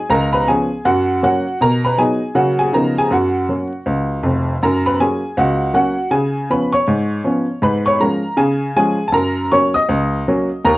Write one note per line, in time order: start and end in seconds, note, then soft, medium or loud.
0.10 0.42 C#2 medium
0.10 0.33 A#4 medium
0.10 0.33 A#5 loud
0.33 0.47 B4 medium
0.33 0.47 B5 medium
0.47 0.68 F3 soft
0.47 0.68 B3 soft
0.47 0.69 C#4 soft
0.47 0.83 G#4 medium
0.47 0.85 G#5 medium
0.85 1.17 F#2 medium
0.85 1.21 F#4 medium
0.85 1.22 F#5 medium
1.23 1.44 F#3 soft
1.23 1.44 A#3 medium
1.23 1.44 C#4 medium
1.23 1.59 F#4 medium
1.23 1.61 F#5 medium
1.61 1.93 B2 medium
1.61 1.84 A#4 medium
1.61 1.85 A#5 loud
1.85 1.98 B4 medium
1.85 1.98 B5 medium
1.98 2.19 F#3 soft
1.98 2.19 B3 soft
1.98 2.20 D#4 soft
1.98 2.34 G#4 medium
1.98 2.36 G#5 medium
2.35 2.67 C#3 medium
2.35 2.56 F#3 soft
2.35 2.56 A#3 soft
2.35 2.57 C#4 soft
2.35 2.58 F#4 medium
2.35 2.59 F#5 medium
2.59 2.73 G#4 medium
2.59 2.73 G#5 medium
2.73 3.05 C#3 medium
2.73 2.94 F3 soft
2.73 2.94 B3 soft
2.73 2.95 D#4 soft
2.73 2.96 A#4 medium
2.73 2.97 A#5 medium
2.98 3.11 G#4 medium
2.98 3.12 G#5 medium
3.11 3.43 F#2 medium
3.11 4.45 F#4 medium
3.11 4.48 F#5 medium
3.49 3.70 F#3 soft
3.49 3.70 A#3 soft
3.49 3.70 C#4 soft
3.86 4.18 C#2 medium
4.23 4.54 F1 medium
4.23 4.54 F2 medium
4.63 4.94 F#2 medium
4.63 4.85 A#4 medium
4.63 4.86 A#5 medium
4.86 4.99 B4 medium
4.86 5.00 B5 medium
5.00 5.20 F#3 soft
5.00 5.21 A#3 soft
5.00 5.21 C#4 soft
5.00 5.36 G#4 medium
5.00 5.38 G#5 medium
5.37 5.69 C#2 medium
5.37 5.73 F#4 medium
5.37 5.73 F#5 medium
5.74 5.95 F#3 soft
5.74 5.95 A#3 soft
5.74 5.95 C#4 medium
5.74 6.10 F#4 medium
5.74 6.12 F#5 medium
6.11 6.44 C#3 medium
6.11 6.48 G#4 medium
6.11 6.50 G#5 medium
6.50 6.71 F3 soft
6.50 6.71 B3 soft
6.50 6.71 C#4 soft
6.50 6.73 B4 medium
6.50 6.74 B5 medium
6.72 7.59 C#5 medium
6.72 7.63 C#6 medium
6.88 7.20 G#2 medium
7.24 7.45 F3 soft
7.24 7.46 B3 soft
7.24 7.46 C#4 medium
7.62 7.94 G#2 medium
7.62 7.85 B4 medium
7.62 7.86 B5 medium
7.86 8.00 C#5 medium
7.86 8.00 C#6 medium
8.00 8.21 F3 soft
8.00 8.21 G#3 soft
8.00 8.21 C#4 soft
8.00 8.37 A#4 medium
8.00 8.38 A#5 medium
8.37 8.69 C#3 medium
8.37 8.73 G#4 medium
8.37 8.75 G#5 medium
8.76 8.97 F3 medium
8.76 8.97 G#3 medium
8.76 8.97 C#4 soft
8.76 9.07 G#4 medium
8.76 9.09 G#5 medium
9.08 9.13 A5 medium
9.12 9.45 F#2 medium
9.12 9.49 A#4 medium
9.12 9.51 A#5 loud
9.52 9.72 F#3 soft
9.52 9.72 A#3 soft
9.52 9.73 C#4 soft
9.52 9.74 C#5 medium
9.52 9.75 C#6 medium
9.74 10.61 D#5 medium
9.74 10.64 D#6 medium
9.89 10.21 C#2 medium
10.28 10.48 F#3 medium
10.28 10.48 A#3 medium
10.28 10.48 C#4 medium
10.65 10.78 D#2 medium
10.65 10.78 A#4 medium
10.65 10.78 A#5 loud